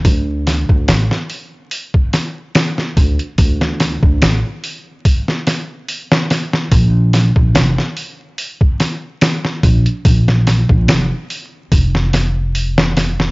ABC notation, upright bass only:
X:1
M:4/4
L:1/16
Q:"Swing 16ths" 1/4=72
K:Dm
V:1 name="Upright bass" clef=bass
D,,3 D,, A,,, z8 z D,, z | D,,3 D,, A,,, z8 z3 | B,,,3 B,,, F,,, z8 z B,,, z | B,,,3 B,,, F,,, z3 F,,,8 |]